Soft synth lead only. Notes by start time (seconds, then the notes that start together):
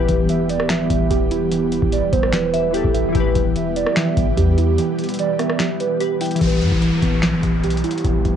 0.29 E5
0.50 D5
0.70 E5
1.92 D5
2.12 C5
2.33 B4
2.94 E5
3.56 E5
3.76 D5
5.19 D5
5.40 E5
5.80 B4